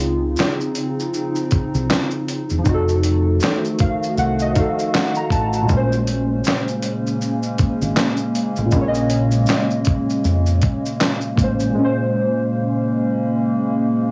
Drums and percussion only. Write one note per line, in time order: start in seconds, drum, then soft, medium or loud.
0.00 closed hi-hat medium
0.00 shaker soft
0.36 snare loud
0.36 clap medium
0.36 shaker medium
0.61 shaker soft
0.75 closed hi-hat medium
0.75 shaker soft
1.00 shaker soft
1.14 shaker medium
1.36 shaker soft
1.51 kick medium
1.51 closed hi-hat medium
1.51 shaker soft
1.75 shaker soft
1.90 snare loud
1.90 clap medium
1.90 shaker medium
2.11 shaker soft
2.28 closed hi-hat medium
2.28 shaker soft
2.50 shaker soft
2.65 kick medium
2.65 shaker medium
2.88 shaker soft
3.03 closed hi-hat medium
3.03 shaker soft
3.40 snare loud
3.40 clap medium
3.40 shaker medium
3.65 shaker soft
3.79 kick loud
3.79 closed hi-hat medium
3.79 shaker soft
4.03 shaker soft
4.17 shaker medium
4.39 shaker soft
4.55 kick medium
4.55 closed hi-hat medium
4.55 shaker soft
4.79 shaker soft
4.95 snare loud
4.95 clap medium
4.95 shaker medium
5.15 shaker soft
5.30 kick loud
5.30 closed hi-hat medium
5.30 shaker soft
5.53 shaker soft
5.69 kick medium
5.69 shaker medium
5.92 shaker soft
6.07 closed hi-hat medium
6.07 shaker soft
6.44 snare loud
6.44 clap medium
6.44 shaker medium
6.68 shaker soft
6.83 closed hi-hat medium
6.83 shaker soft
7.07 shaker soft
7.22 shaker medium
7.43 shaker soft
7.58 kick medium
7.58 closed hi-hat medium
7.58 shaker soft
7.82 shaker soft
7.97 snare loud
7.97 clap medium
7.97 shaker medium
8.17 shaker soft
8.35 closed hi-hat medium
8.35 shaker soft
8.56 shaker soft
8.71 kick medium
8.71 shaker medium
8.94 shaker soft
9.10 closed hi-hat medium
9.10 shaker soft
9.31 shaker soft
9.46 snare loud
9.46 clap medium
9.46 shaker medium
9.71 shaker soft
9.85 kick loud
9.85 closed hi-hat medium
9.85 shaker soft
10.10 shaker soft
10.24 shaker medium
10.46 shaker soft
10.62 kick medium
10.62 closed hi-hat medium
10.62 shaker soft
10.86 shaker soft
11.01 snare loud
11.01 clap medium
11.01 shaker medium
11.21 shaker soft
11.37 kick medium
11.37 closed hi-hat medium
11.37 shaker soft
11.60 shaker soft